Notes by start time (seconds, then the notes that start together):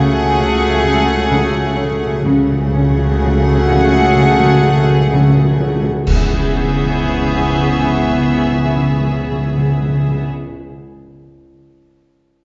Already playing: C#2 C#3 A3 F#4 G#4 F#5 C#6
0.04 C#3
0.19 C#3
0.25 C#3
0.32 C#3
0.37 C#3
0.46 C#3
0.55 C#3
0.62 C#3
0.70 C#3
0.77 C#3
0.84 C#3
1.01 C#3
1.16 C#3
1.24 C#3
1.32 C#3
1.39 C#3
1.47 C#3
1.54 C#3
1.62 C#3
1.68 C#3
1.79 C#3 C#4
1.91 C#3
1.98 C#3
2.06 C#3
2.13 C#3
2.22 C#3
2.26 C#2 C#3 A3 F#4 G#4 F#5
2.36 C#3
2.44 C#3
2.52 C#3
2.58 C#3
2.67 C#3
2.73 C#3 C#4
2.81 C#3
2.89 C#3
2.97 C#3
3.04 C#3
3.11 C#3
3.18 C#3
3.22 C#3
3.34 C#3
3.42 C#3
3.50 C#3
3.56 C#3
3.64 C#3
3.70 C#3
3.79 C#3
3.87 C#3
3.94 C#3
4.02 C#3
4.09 C#3
4.16 C#3 F#4 F#5
4.24 C#3
4.31 C#3
4.39 C#3
4.46 C#3
4.54 C#3
4.61 C#3
4.68 C#3
4.76 C#3
4.83 C#3
4.90 C#3
4.99 C#3
5.06 C#3
5.12 C#3
5.21 C#3
5.29 C#3
5.37 C#3
5.43 C#3
5.51 C#3
5.59 C#3 C#4
5.67 C#3
5.74 C#3
5.82 C#3
5.89 C#3
5.97 C#3
6.07 C#2 C#3 B3 E4 G#4 E5 C#6 G6, concert bass drum, crash
6.15 C#3
6.21 C#3
6.27 C#3
6.33 C#3
6.39 C#3
6.46 C#3
6.52 C#3
6.58 C#3
6.64 C#3
6.72 C#3
6.78 C#3
6.85 C#3
6.91 C#3
6.97 C#3
7.03 C#3
7.09 C#3
7.15 C#3
7.22 C#3
7.28 C#3
7.34 C#3
7.41 C#3
7.46 C#3
7.53 C#3
7.59 C#3
7.65 C#3
7.71 C#3
7.77 C#3
7.83 C#3
7.90 C#3
7.96 C#3
8.03 C#3
8.09 C#3
8.15 C#3
8.21 C#3
8.27 C#3
8.33 C#3
8.40 C#3
8.46 C#3
8.52 C#3
8.58 C#3
8.64 C#3
8.70 C#3
8.76 C#3
8.83 C#3
8.89 C#3
8.95 C#3
9.01 C#3
9.07 C#3
9.13 C#3
9.19 C#3
9.26 C#3
9.32 C#3
9.38 C#3
9.45 C#3
9.51 C#3
9.57 C#3
9.64 C#3
9.70 C#3
9.76 C#3
9.82 C#3
9.89 C#3
9.95 C#3
10.01 C#3
10.08 C#3
10.14 C#3
10.21 C#3